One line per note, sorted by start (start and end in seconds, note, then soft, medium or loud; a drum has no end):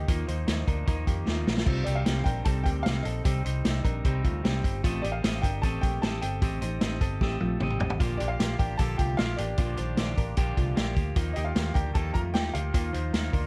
0.00 1.42 D#5 loud
0.08 0.25 D#2 loud
0.08 0.28 D#3 medium
0.08 0.29 F3 medium
0.08 0.29 A#3 medium
0.08 0.27 A#3 medium
0.08 0.26 D#4 medium
0.08 0.28 F4 loud
0.08 kick loud
0.08 closed hi-hat loud
0.27 0.45 D#2 loud
0.27 0.47 F3 medium
0.27 0.48 A#3 medium
0.27 0.47 D#4 medium
0.27 0.66 D#4 medium
0.27 0.65 C5 medium
0.27 closed hi-hat medium
0.47 0.64 D#2 loud
0.47 0.67 D#3 medium
0.47 0.68 F3 medium
0.47 0.67 A#3 medium
0.47 0.66 D#4 medium
0.47 snare loud
0.47 closed hi-hat loud
0.67 0.84 D2 medium
0.67 0.85 F3 medium
0.67 0.87 A#3 medium
0.67 0.88 D4 medium
0.67 0.87 D#4 medium
0.67 0.87 A#4 medium
0.67 kick medium
0.67 closed hi-hat medium
0.86 1.04 D#2 loud
0.86 1.25 D#3 medium
0.86 1.25 F3 medium
0.86 1.26 A#3 loud
0.86 1.28 D#4 loud
0.86 1.08 D#4 medium
0.86 1.07 A#4 medium
0.86 kick loud
0.86 closed hi-hat medium
1.07 1.24 F2 medium
1.07 1.27 A#3 medium
1.07 1.27 G4 medium
1.07 kick medium
1.07 closed hi-hat medium
1.25 1.44 D#2 medium
1.25 1.46 D#3 medium
1.25 1.47 F3 medium
1.25 1.46 A#3 medium
1.25 1.65 A#3 medium
1.25 1.44 D#4 medium
1.25 1.64 F4 medium
1.25 snare medium
1.46 1.64 A#1 loud
1.46 1.67 F3 soft
1.46 1.67 A#3 soft
1.46 1.66 D#4 soft
1.46 snare loud
1.57 snare loud
1.66 1.83 C2 loud
1.66 1.86 C3 medium
1.66 1.87 G3 medium
1.66 1.87 C4 medium
1.66 1.86 C4 loud
1.66 1.84 D#4 loud
1.66 1.86 F4 loud
1.66 kick loud
1.66 crash medium
1.84 2.03 C2 loud
1.84 2.07 A#3 medium
1.84 2.06 C4 medium
1.84 2.06 D#4 medium
1.84 2.05 G4 medium
1.84 1.96 D5 medium
1.84 closed hi-hat medium
1.89 2.05 G3 medium
1.95 2.27 F5 medium
2.05 2.23 C2 loud
2.05 2.44 C3 medium
2.05 2.46 G3 medium
2.05 2.27 C4 medium
2.05 2.46 C4 medium
2.05 2.47 D#4 medium
2.05 2.25 G4 medium
2.05 snare loud
2.05 closed hi-hat loud
2.24 2.43 A#1 medium
2.24 2.46 D4 soft
2.24 2.45 A#4 medium
2.24 2.46 G5 loud
2.24 kick loud
2.24 closed hi-hat medium
2.45 2.62 C2 medium
2.45 2.84 C3 medium
2.45 2.86 G3 medium
2.45 2.66 C4 medium
2.45 2.87 C4 medium
2.45 2.88 D#4 medium
2.45 2.65 A4 medium
2.45 2.66 A5 medium
2.45 kick loud
2.45 closed hi-hat medium
2.64 2.82 D2 medium
2.64 3.03 A#3 medium
2.64 3.03 G4 medium
2.64 2.85 G5 loud
2.64 kick medium
2.64 closed hi-hat medium
2.83 3.02 C2 loud
2.83 3.05 C3 medium
2.83 3.06 G3 medium
2.83 3.05 F5 loud
2.83 snare loud
2.83 closed hi-hat medium
2.87 3.06 C4 medium
2.87 3.04 D#4 medium
3.03 3.22 A#1 loud
3.03 3.25 C4 medium
3.03 3.25 D#4 soft
3.03 3.25 A4 medium
3.03 4.59 D#5 medium
3.03 closed hi-hat medium
3.07 3.23 G3 soft
3.07 3.25 C4 soft
3.24 3.42 C2 loud
3.24 3.45 C3 medium
3.24 3.45 G3 medium
3.24 3.45 C4 medium
3.24 3.43 D#4 medium
3.24 3.44 G4 medium
3.24 kick loud
3.24 closed hi-hat loud
3.44 3.62 C2 loud
3.44 3.64 G3 medium
3.44 3.65 C4 medium
3.44 3.65 D#4 medium
3.44 3.83 D#4 medium
3.44 3.82 C5 medium
3.44 closed hi-hat medium
3.64 3.82 C2 loud
3.64 3.84 C3 medium
3.64 3.85 G3 medium
3.64 3.84 C4 medium
3.64 3.82 D#4 medium
3.64 snare loud
3.64 closed hi-hat loud
3.83 4.01 A#1 medium
3.83 4.04 G3 soft
3.83 4.05 C4 medium
3.83 4.05 D4 medium
3.83 4.04 D#4 medium
3.83 4.04 A#4 medium
3.83 kick medium
3.83 closed hi-hat medium
4.04 4.21 C2 loud
4.04 4.42 C3 loud
4.04 4.44 G3 loud
4.04 4.45 C4 loud
4.04 4.25 C4 medium
4.04 4.46 D#4 loud
4.04 4.24 G4 medium
4.04 kick loud
4.04 closed hi-hat medium
4.24 4.41 D2 medium
4.24 4.45 A3 medium
4.24 4.44 F4 medium
4.24 kick medium
4.24 closed hi-hat medium
4.43 4.61 C2 medium
4.43 4.64 C3 medium
4.43 4.64 G3 medium
4.43 4.82 C4 medium
4.43 4.64 C4 medium
4.43 4.62 D#4 medium
4.43 4.81 G4 medium
4.43 snare loud
4.43 closed hi-hat medium
4.63 4.81 G1 loud
4.63 4.84 G3 medium
4.63 4.83 C4 medium
4.63 4.83 D#4 medium
4.63 kick medium
4.63 closed hi-hat medium
4.84 5.00 A1 loud
4.84 5.04 A3 loud
4.84 5.04 A3 medium
4.84 5.04 C4 loud
4.84 5.03 F4 loud
4.84 5.04 G4 medium
4.84 5.04 A4 loud
4.84 5.02 D#5 loud
4.84 kick loud
4.84 closed hi-hat loud
5.02 5.20 A1 loud
5.02 5.24 A#3 medium
5.02 5.23 G4 medium
5.02 5.23 A4 medium
5.02 5.07 D5 loud
5.02 5.23 D#5 medium
5.02 closed hi-hat medium
5.06 5.23 G4 soft
5.12 5.43 F5 medium
5.23 5.40 A1 loud
5.23 5.43 C4 medium
5.23 5.44 C4 medium
5.23 5.43 G4 medium
5.23 5.43 A4 medium
5.23 5.41 D#5 medium
5.23 snare loud
5.23 closed hi-hat loud
5.42 5.60 G1 medium
5.42 5.64 D4 medium
5.42 5.62 G4 soft
5.42 5.63 A4 soft
5.42 5.63 A#4 medium
5.42 5.63 D#5 medium
5.42 5.63 G5 loud
5.42 kick medium
5.42 closed hi-hat medium
5.62 5.79 A1 loud
5.62 6.02 A3 medium
5.62 6.01 C4 medium
5.62 5.84 C4 medium
5.62 6.03 G4 loud
5.62 5.83 A4 medium
5.62 6.03 A4 medium
5.62 6.04 D#5 medium
5.62 5.81 A5 loud
5.62 kick medium
5.62 closed hi-hat medium
5.81 5.99 A#1 medium
5.81 6.21 A#3 medium
5.81 6.20 G4 medium
5.81 6.00 G5 loud
5.81 kick medium
5.81 closed hi-hat medium
6.02 6.19 A1 medium
6.02 6.22 C4 medium
6.02 6.23 G4 medium
6.02 6.22 A4 medium
6.02 6.20 D#5 medium
6.02 6.23 A5 loud
6.02 snare loud
6.02 closed hi-hat medium
6.22 6.39 G1 medium
6.22 6.42 C4 medium
6.22 6.42 G4 soft
6.22 6.42 A4 medium
6.22 6.42 A4 soft
6.22 6.42 D#5 soft
6.22 7.76 G5 loud
6.22 closed hi-hat medium
6.41 6.59 A1 loud
6.41 6.62 A3 medium
6.41 6.62 C4 medium
6.41 6.62 G4 loud
6.41 6.62 G4 medium
6.41 6.62 A4 medium
6.41 6.60 D#5 medium
6.41 kick loud
6.41 closed hi-hat loud
6.61 6.78 A1 loud
6.61 7.00 D#4 medium
6.61 6.81 G4 soft
6.61 6.82 A4 soft
6.61 6.99 C5 medium
6.61 6.81 D#5 medium
6.61 closed hi-hat medium
6.81 6.98 A1 loud
6.81 7.01 C4 medium
6.81 7.02 G4 medium
6.81 7.02 A4 medium
6.81 7.00 D#5 medium
6.81 snare loud
6.81 closed hi-hat loud
7.01 7.18 G1 medium
7.01 7.21 C4 medium
7.01 7.21 G4 medium
7.01 7.21 A4 medium
7.01 7.22 A4 medium
7.01 7.21 D#5 medium
7.01 kick loud
7.01 closed hi-hat medium
7.21 7.37 A1 loud
7.21 7.61 A3 loud
7.21 7.59 C4 medium
7.21 7.41 C4 medium
7.21 7.40 G4 medium
7.21 7.61 G4 medium
7.21 7.61 A4 loud
7.21 7.62 D#5 loud
7.21 kick loud
7.21 snare medium
7.41 7.58 A#1 medium
7.41 7.61 A3 medium
7.41 7.60 F4 medium
7.41 high tom medium
7.60 7.77 A1 loud
7.60 7.80 C4 medium
7.60 7.98 C4 medium
7.60 7.98 G4 medium
7.60 7.81 G4 medium
7.60 7.80 A4 medium
7.60 7.78 D#5 medium
7.60 mid tom loud
7.70 mid tom medium
7.79 7.97 A1 medium
7.79 8.01 G4 soft
7.79 8.01 A4 soft
7.79 8.00 D#5 medium
7.79 floor tom loud
7.90 floor tom loud
7.99 8.17 A#1 loud
7.99 8.20 A#2 medium
7.99 8.20 D3 medium
7.99 8.20 F3 medium
7.99 8.19 A#3 medium
7.99 8.21 A#3 loud
7.99 8.20 F4 loud
7.99 8.18 G4 medium
7.99 kick loud
7.99 closed hi-hat loud
8.17 8.37 A#1 medium
8.17 8.39 A#3 medium
8.17 8.28 D4 medium
8.17 8.40 F4 medium
8.17 8.38 G4 medium
8.17 8.40 G4 medium
8.17 8.29 D5 loud
8.17 closed hi-hat medium
8.22 8.39 F3 soft
8.22 8.39 A#3 medium
8.28 8.57 F4 medium
8.28 8.60 F5 loud
8.39 8.56 A#1 medium
8.39 8.60 F3 medium
8.39 8.60 A#3 medium
8.39 8.59 F4 medium
8.39 8.59 G4 medium
8.39 8.58 G4 medium
8.39 snare loud
8.39 closed hi-hat loud
8.59 8.76 A1 medium
8.59 8.79 F3 soft
8.59 8.79 A#3 medium
8.59 8.80 D4 medium
8.59 8.80 F4 medium
8.59 8.79 G4 medium
8.59 8.78 G4 medium
8.59 8.79 A#4 medium
8.59 8.80 G5 loud
8.59 kick loud
8.59 closed hi-hat medium
8.77 8.96 A#1 loud
8.77 9.19 A#2 medium
8.77 9.19 D3 medium
8.77 9.17 F3 medium
8.77 8.99 A#3 medium
8.77 9.18 A#3 medium
8.77 9.20 F4 medium
8.77 8.99 G4 medium
8.77 8.98 A4 loud
8.77 8.99 A5 loud
8.77 kick medium
8.77 closed hi-hat medium
8.82 9.20 G4 medium
8.98 9.16 C2 medium
8.98 9.37 A3 medium
8.98 9.36 F4 medium
8.98 9.17 G4 medium
8.98 9.19 G5 medium
8.98 kick medium
8.98 closed hi-hat medium
9.17 9.36 A#1 medium
9.17 9.38 F3 medium
9.17 9.39 A#3 medium
9.17 9.37 F4 medium
9.17 9.36 G4 medium
9.17 9.38 F5 loud
9.17 snare loud
9.17 closed hi-hat medium
9.37 9.55 A1 loud
9.37 9.58 A#3 soft
9.37 9.58 A#3 medium
9.37 10.93 D4 medium
9.37 9.58 F4 soft
9.37 9.58 G4 soft
9.37 9.59 G4 medium
9.37 10.92 D5 loud
9.37 closed hi-hat medium
9.41 9.57 F3 soft
9.57 9.75 A#1 loud
9.57 9.78 A#2 medium
9.57 9.78 D3 medium
9.57 9.78 F3 medium
9.57 9.78 A#3 medium
9.57 9.79 A#3 medium
9.57 9.78 F4 loud
9.57 9.77 F4 medium
9.57 9.75 G4 medium
9.57 kick loud
9.57 closed hi-hat loud
9.77 9.95 A#1 loud
9.77 10.16 D#3 medium
9.77 9.95 F3 medium
9.77 9.97 A#3 medium
9.77 9.98 F4 medium
9.77 9.97 G4 medium
9.77 10.15 C5 medium
9.77 closed hi-hat medium
9.96 10.15 A#1 loud
9.96 10.37 F3 medium
9.96 10.38 A#3 medium
9.96 10.38 F4 medium
9.96 10.37 G4 medium
9.96 snare loud
9.96 closed hi-hat loud
10.18 10.34 A1 medium
10.18 10.38 D4 medium
10.18 10.37 A#4 medium
10.18 kick medium
10.18 closed hi-hat medium
10.37 10.54 A#1 loud
10.37 10.76 A#2 loud
10.37 10.77 D3 medium
10.37 10.75 F3 loud
10.37 10.76 A#3 loud
10.37 10.57 A#3 medium
10.37 10.77 F4 medium
10.37 10.57 G4 medium
10.37 10.77 G4 loud
10.37 kick loud
10.37 closed hi-hat loud
10.57 10.74 C2 medium
10.57 10.77 A3 medium
10.57 10.77 F4 medium
10.57 kick medium
10.57 closed hi-hat medium
10.75 10.94 A#1 loud
10.75 10.96 F3 medium
10.75 10.96 A#3 medium
10.75 11.14 A#3 medium
10.75 10.95 F4 medium
10.75 11.14 G4 medium
10.75 10.94 G4 medium
10.75 snare loud
10.75 closed hi-hat medium
10.95 11.13 D2 loud
10.95 11.15 F3 soft
10.95 11.16 A#3 medium
10.95 11.16 F4 medium
10.95 11.15 G4 medium
10.95 kick medium
10.95 closed hi-hat medium
11.16 11.33 D#2 loud
11.16 11.36 D#3 medium
11.16 11.36 F3 loud
11.16 11.36 A#3 medium
11.16 11.34 D#4 loud
11.16 11.36 F4 loud
11.16 kick loud
11.16 closed hi-hat loud
11.33 11.53 D#2 loud
11.33 11.55 A#3 medium
11.33 11.56 A#3 medium
11.33 11.55 D#4 medium
11.33 11.44 D#4 medium
11.33 11.54 G4 medium
11.33 11.45 D#5 medium
11.33 closed hi-hat medium
11.38 11.55 F3 soft
11.45 11.73 F4 medium
11.45 11.76 F5 medium
11.55 11.72 D#2 loud
11.55 11.93 D#3 medium
11.55 11.93 F3 medium
11.55 11.76 A#3 medium
11.55 11.94 A#3 medium
11.55 11.96 D#4 medium
11.55 11.75 G4 medium
11.55 snare loud
11.55 closed hi-hat loud
11.74 11.92 D2 medium
11.74 11.96 D4 medium
11.74 11.93 G4 medium
11.74 11.94 A#4 medium
11.74 11.95 G5 loud
11.74 kick loud
11.74 closed hi-hat medium
11.93 12.12 D#2 loud
11.93 12.33 D#3 medium
11.93 12.34 F3 loud
11.93 12.35 A#3 medium
11.93 12.15 A#3 medium
11.93 12.37 D#4 medium
11.93 12.15 G4 medium
11.93 12.13 A4 loud
11.93 12.15 A5 loud
11.93 kick loud
11.93 closed hi-hat loud
12.14 12.35 F2 loud
12.14 12.52 A3 medium
12.14 12.52 F4 medium
12.14 12.23 A#4 medium
12.14 12.19 A#5 loud
12.14 kick medium
12.14 closed hi-hat medium
12.34 12.51 D#2 medium
12.34 12.54 D#3 medium
12.34 12.55 F3 medium
12.34 12.54 A#3 medium
12.34 12.52 D#4 medium
12.34 12.52 G4 medium
12.34 12.55 G5 loud
12.34 snare loud
12.34 closed hi-hat medium
12.53 12.71 D2 loud
12.53 12.72 F3 soft
12.53 12.73 A#3 medium
12.53 12.73 A#3 soft
12.53 12.73 D#4 medium
12.53 13.47 F4 medium
12.53 12.74 G4 medium
12.53 13.47 F5 medium
12.53 closed hi-hat medium
12.73 12.91 D#2 loud
12.73 12.93 D#3 medium
12.73 12.93 F3 medium
12.73 12.93 A#3 medium
12.73 12.92 D#4 medium
12.73 12.94 F4 loud
12.73 kick loud
12.73 closed hi-hat loud
12.93 13.10 D#2 loud
12.93 13.13 F3 medium
12.93 13.14 A#3 medium
12.93 13.13 D#4 medium
12.93 13.31 D#4 medium
12.93 13.31 C5 medium
12.93 closed hi-hat medium
13.13 13.30 D#2 loud
13.13 13.33 D#3 medium
13.13 13.34 F3 medium
13.13 13.33 A#3 medium
13.13 13.31 D#4 medium
13.13 snare loud
13.13 closed hi-hat loud
13.32 13.47 D2 loud
13.32 13.47 F3 medium
13.32 13.47 A#3 medium
13.32 13.47 D4 medium
13.32 13.47 D#4 medium
13.32 13.47 A#4 medium
13.32 kick loud
13.32 closed hi-hat medium